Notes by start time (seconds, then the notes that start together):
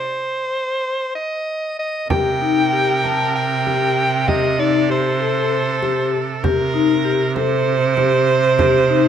Already playing: C5
1.15 D#5
1.79 D#5
2.10 C3 G4 A#4 G5, frame drum
2.42 D#4
2.73 G4
3.04 A5, frame drum
3.36 G5
3.66 G4, frame drum
4.28 G4 D#5, frame drum
4.59 D#4 A4 D5
4.90 G4 C5
5.20 A4
5.82 G4, frame drum
6.43 C3 G4 A#4, frame drum
6.74 D#4
7.05 G4
7.35 A4 C5, frame drum
7.97 G4, frame drum
8.59 G4, frame drum
8.90 D#4